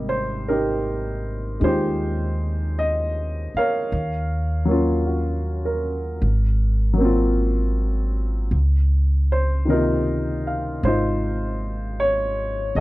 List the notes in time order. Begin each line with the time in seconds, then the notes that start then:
Already playing: G#1 C3 G3 A#3 D#4
0.09 C5
0.48 D#4 G4 A#4
1.60 D#2 G#3 D#4 F4
1.64 D#4 G4 C5
2.79 D#5
3.54 A#4 C#5 F5, muted upright bass stroke
3.92 D#2
4.65 F#3 A#3 C#4
4.71 F4
5.07 F#4
5.65 A#4
6.22 G#1
6.93 F#3
6.98 A#3 C4
7.05 F4
8.51 C#2
9.32 C5
9.65 C3 D#3 A#3
9.70 D#4 F4 A#4
10.47 F5
10.83 G#1 D#4 F4 C5
12.00 C#5
12.75 C2 D#5